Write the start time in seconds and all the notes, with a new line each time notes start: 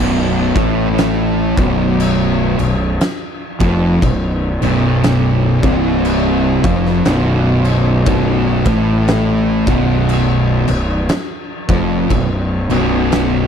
Already playing: B0 B1 B2
0.55 A1 A2 A3, kick, crash
0.98 snare, crash
1.57 B0 B1 B2, kick, crash
2.00 crash
2.59 B0 B1, crash
3.01 snare, crash
3.60 F1 F2 F3, kick, crash
4.02 B0 B1, kick, crash
4.62 B0 B1 B2, crash
5.04 snare, crash
5.63 C1 C2 C3, kick, crash
6.05 crash
6.64 F1 F2 F3, kick, crash
6.86 snare
7.05 B0 B1 B2, snare, crash
7.64 crash
8.06 B0 B1 B2, kick, crash
8.65 A1 A2 A3, kick, crash
9.08 snare, crash
9.67 B0 B1 B2, kick, crash
10.09 crash
10.68 B0 B1, crash
11.09 snare, crash
11.69 F1 F2 F3, kick, crash
12.10 B0 B1, kick, crash
12.70 B0 B1 B2, crash
13.12 snare, crash